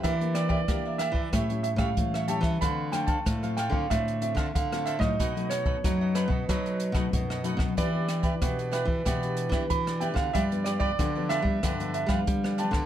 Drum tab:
HH |xxx-x-x-xxxxx-x-|x-xxxxx-xxx-xxx-|xxx-x-x-xxxxx-x-|x-xxxxx-xxx-xxx-|
SD |--r-r-r-r--r-r-r|--r-r-r-r--r-r-r|--r-r-r-r--r-r-r|--r-r-r-r--r-r-r|
BD |o--oo--oo--oo--o|o--oo--oo--oo--o|o--oo--oo--oo--o|o--oo--oo--oo--o|

HH |xxx-x-x-xxxxx-x-|
SD |--r-r-r-r--r-r-r|
BD |o--oo--oo--oo--o|